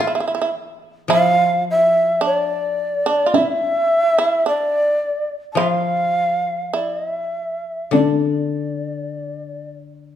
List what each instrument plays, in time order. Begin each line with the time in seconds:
Already playing: koto E3 A#3 E4, shakuhachi E5
0.00 shamisen E4, koto F4
0.07 shamisen E4
0.15 shamisen E4
0.20 shamisen E4
0.28 shamisen E4
0.35 shamisen E4
0.42 shamisen E4
1.08 koto F3, shamisen E4, taiko rim
1.13 shakuhachi F5
1.36 shamisen F4
1.71 shakuhachi E5
2.21 shamisen D4
2.26 shakuhachi D5
3.06 shamisen D4
3.26 shamisen F4
3.34 shamisen E4, shakuhachi E5, taiko high
4.18 shamisen E4
4.46 shamisen D4, shakuhachi D5
5.52 koto F3, shakuhachi A5
5.57 shamisen F4, shakuhachi E5, taiko rim
5.69 shakuhachi F5
6.73 shamisen E4, shakuhachi D5
6.97 shakuhachi D#5
7.11 shakuhachi E5
7.91 koto D3, shamisen D4, shakuhachi D5, taiko high